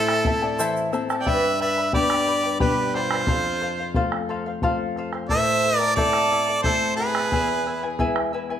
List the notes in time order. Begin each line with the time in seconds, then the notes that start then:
Already playing: A2 E4 A4 C5 E5 A5
0.08 bombo rim
0.25 C4 E4 A4 E5 A5, bombo low
0.42 E4 A4 D5 A5
0.59 E3 E4 A4 C5 E5 A5, shaker
0.76 shaker
0.93 C4 E4 A4 C5 E5 A5, bombo rim, shaker
1.10 E4 A4 A5, bombo rim, shaker
1.19 D5 G5
1.26 G2 G4 B4 D5 E5 G5 B5, bombo rim, bombo low
1.60 B4 D5 E5 G5 B5
1.78 B4 D5 B5
1.93 G3 B3 D4 G4 B4 D5 G5 B5, bombo low
2.10 bombo rim
2.26 B4 D5 G5 B5
2.44 B4 D5 B5
2.60 B2 G3 D4 G4 B4 D5 G5 B5, bombo low
2.94 F4 B4 C5 D5 G5 B5, bombo rim
3.11 B4 D5 B5, bombo rim
3.27 F2 A4 C5 F5, bombo rim, bombo low
3.61 A4 C5 F5
3.79 C5 F5
3.94 A3 C4 F4 A4 C5 F5, bombo low
4.12 bombo rim
4.29 A4 C5 F5
4.46 C5 F5
4.62 A3 C4 F4 A4 C5 F5, bombo low
4.96 A4 C5 F5, bombo rim
5.13 C5 F5, bombo rim
5.29 A2 E4 A4 C5 E5 A5, bombo rim, bombo low
5.64 E4 A4 E5 A5
5.77 A4 A#4 D5 A5
5.82 E4
5.95 A3 C4 E4 A4 C5 D5 E5 A5, bombo low
6.13 bombo rim
6.31 E4 A4 E5 A5
6.48 E4 A4 A5
6.62 A3 C4 E4 A4 C5 E5 A5, bombo low
6.97 E4 G#4 A4 B4 E5 A5, bombo rim
7.15 E4 A4 A5, bombo rim
7.32 E2 E4 G#4 B4 E5 G#5, bombo rim, bombo low
7.48 bombo rim
7.67 E4 B4 E5 G#5
7.82 E4 B4 G#5, bombo rim
7.99 G#3 B3 E4 G#4 B4 E5 G#5, bombo rim, bombo low
8.16 bombo rim
8.32 E4 B4 E5 G#5, bombo rim
8.50 E4 B4 G#5, bombo rim